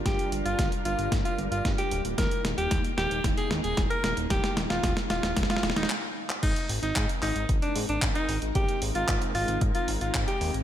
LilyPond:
<<
  \new Staff \with { instrumentName = "Alto saxophone" } { \time 4/4 \key aes \lydian \tempo 4 = 113 g'8 r16 f'8 r16 f'8 r16 f'16 r16 f'16 r16 g'8 r16 | bes'8 r16 g'8 r16 g'8 r16 aes'16 r16 aes'16 r16 bes'8 r16 | g'8 r16 f'8 r16 f'8 r16 f'16 r16 ees'16 r4 | ees'8 r16 ees'8 r16 ees'8 r16 d'16 r16 d'16 r16 ees'8 r16 |
g'8 r16 f'8 r16 f'8 r16 f'16 r16 f'16 r16 g'8 r16 | }
  \new Staff \with { instrumentName = "String machine" } { \time 4/4 \key aes \lydian << { <g bes'>1~ | <g bes'>1~ | <g bes'>2. r4 | <aes bes'>1~ |
<aes bes'>1 | } \\ { <d' f'>1 | <bes ees'>1~ | <bes ees'>2. r4 | <c' ees'>1~ |
<c' ees'>1 | } >> }
  \new Staff \with { instrumentName = "Analog synth bass" } { \clef bass \time 4/4 \key aes \lydian g,,16 r16 g,,16 g,,16 g,,16 r16 g,,16 g,,16 g,,16 r16 g,,16 g,,16 g,16 r16 d,,16 d,,16 | ees,,16 r16 ees,,16 ees,,16 ees,16 r16 ees,,16 ees,,16 ees,,16 r16 ees,16 ees,,16 ees,,16 r16 ees,,16 ees,,16 | ees,,16 r16 ees,,16 ees,,16 ees,,16 r16 ees,,16 ees,,16 ees,,16 r16 ees,,16 ees,,16 r4 | aes,,16 r16 aes,,16 aes,,16 aes,16 r16 aes,,16 aes,,16 aes,,16 r16 aes,16 aes,,16 aes,,16 r16 aes,,16 aes,,16 |
aes,,16 r16 aes,,16 aes,,16 aes,,16 r16 aes,,16 aes,,16 aes,,16 r16 aes,,16 aes,,16 aes,16 r16 ees,16 aes,,16 | }
  \new DrumStaff \with { instrumentName = "Drums" } \drummode { \time 4/4 <hh bd sn>16 hh16 hh16 hh16 <hh bd sn>16 hh16 hh16 hh16 <hh bd sn>16 hh16 hh16 hh16 <hh bd sn>16 hh16 hh16 hh16 | <hh bd sn>16 hh16 <hh sn>16 hh16 <hh bd sn>16 hh16 <hh sn>16 hh16 <hh bd sn>16 hh16 <hh sn>16 hh16 <hh bd sn>16 hh16 <hh sn>16 hh16 | <hh bd sn>16 <hh sn>16 <hh sn>16 <hh sn>16 <hh bd sn>16 <hh sn>16 <hh sn>16 <hh sn>16 <hh bd sn>32 sn32 <hh sn>32 sn32 <hh sn>32 sn32 <hh sn>32 sn32 hc8. hc16 | <cymc hh bd>16 hh16 hho16 hh16 <hc hh bd>16 hh16 <hc hho>16 hh16 <hh bd>16 hh16 hho16 hh16 <hc hh bd>16 hh16 hho16 hh16 |
<hh bd>16 hh16 hho16 hh16 <hc hh bd>16 hh16 hho16 hh16 <hh bd>16 hh16 hho16 hh16 <hc hh bd>16 hh16 hho16 hh16 | }
>>